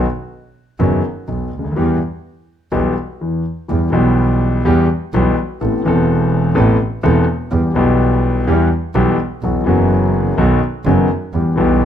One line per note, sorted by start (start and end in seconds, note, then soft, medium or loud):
0.79 1.00 F#1 medium
0.79 1.00 F#2 medium
0.79 0.99 D#3 medium
0.79 1.00 F#3 medium
0.79 1.00 B3 medium
0.79 1.00 F#4 medium
1.28 1.48 B1 medium
1.28 1.48 B2 soft
1.52 1.75 D2 soft
1.59 1.64 C#2 soft
1.64 1.70 D2 medium
1.71 1.77 D#2 medium
1.76 1.96 E2 medium
1.76 1.96 E3 medium
1.76 1.96 G3 medium
1.76 1.96 B3 medium
1.76 1.97 G4 medium
2.72 2.92 B1 medium
2.72 2.92 B2 medium
2.72 2.92 E3 medium
2.72 2.92 G3 medium
2.72 2.92 B3 medium
2.72 2.92 G4 medium
3.21 3.41 E2 medium
3.21 3.41 E3 soft
3.68 3.89 E2 medium
3.68 3.89 E3 medium
3.68 3.89 G3 soft
3.68 3.89 B3 soft
3.68 3.89 G4 medium
3.90 4.61 B1 medium
3.90 4.61 B2 medium
3.90 4.60 E3 medium
3.90 4.61 G3 medium
3.90 4.61 B3 medium
3.95 4.62 G4 medium
4.65 4.85 E2 medium
4.65 4.85 E3 medium
4.65 4.85 G3 medium
4.65 4.85 B3 medium
4.65 4.85 G4 medium
5.13 5.33 B1 medium
5.13 5.33 B2 medium
5.13 5.33 E3 medium
5.13 5.33 G3 medium
5.13 5.34 B3 medium
5.13 5.34 G4 medium
5.61 5.81 A1 medium
5.61 5.81 A2 medium
5.61 5.81 E3 soft
5.61 5.81 B3 soft
5.61 5.81 C4 soft
5.61 5.81 A4 medium
5.84 6.53 E1 medium
5.84 6.53 E2 medium
5.84 6.52 E3 medium
5.84 6.53 B3 medium
5.84 6.53 C4 medium
5.88 6.54 A4 medium
6.55 6.76 A1 medium
6.55 6.75 A2 medium
6.55 6.75 E3 medium
6.55 6.76 B3 medium
6.55 6.76 C4 medium
6.55 6.76 A4 medium
7.03 7.23 E1 medium
7.03 7.24 E1 loud
7.03 7.23 E2 medium
7.03 7.23 E3 medium
7.03 7.24 B3 medium
7.03 7.23 C4 medium
7.03 7.23 A4 medium
7.51 7.71 E2 medium
7.51 7.71 E3 medium
7.51 7.71 G3 soft
7.51 7.71 B3 soft
7.51 7.71 G4 medium
7.74 8.43 B1 loud
7.74 8.43 B1 medium
7.74 8.44 B2 medium
7.74 8.42 E3 medium
7.74 8.43 G3 medium
7.74 8.44 B3 medium
7.74 8.44 G4 medium
8.47 8.67 E2 medium
8.47 8.67 E3 medium
8.47 8.67 G3 medium
8.47 8.67 B3 medium
8.47 8.67 G4 medium
8.95 9.15 B1 medium
8.95 9.15 B2 medium
8.95 9.15 E3 medium
8.95 9.15 G3 medium
8.95 9.15 B3 medium
8.95 9.15 G4 medium
9.42 9.62 B1 medium
9.42 9.63 B1 medium
9.42 9.63 B2 medium
9.42 9.63 E3 soft
9.42 9.63 F#3 soft
9.42 9.63 B3 soft
9.42 9.63 F#4 medium
9.64 10.34 F#1 loud
9.64 10.35 F#1 medium
9.64 10.35 F#2 medium
9.64 10.33 E3 medium
9.64 10.34 F#3 medium
9.64 10.35 B3 medium
9.68 10.36 F#4 medium
10.37 10.58 B1 medium
10.37 10.58 B2 medium
10.37 10.58 D#3 medium
10.37 10.58 F#3 medium
10.37 10.58 B3 medium
10.37 10.58 F#4 medium
10.85 11.06 F#1 medium
10.85 11.06 F#2 medium
10.85 11.06 D#3 medium
10.85 11.06 F#3 medium
10.85 11.07 B3 medium
10.85 11.07 F#4 medium
11.33 11.54 E2 medium
11.33 11.55 E2 medium
11.33 11.54 E3 medium
11.33 11.55 G3 soft
11.33 11.54 B3 soft
11.33 11.55 G4 medium
11.56 11.85 B1 loud
11.56 11.85 B1 medium
11.56 11.85 B2 medium
11.56 11.85 E3 medium
11.56 11.85 G3 medium
11.56 11.85 B3 medium
11.60 11.85 G4 medium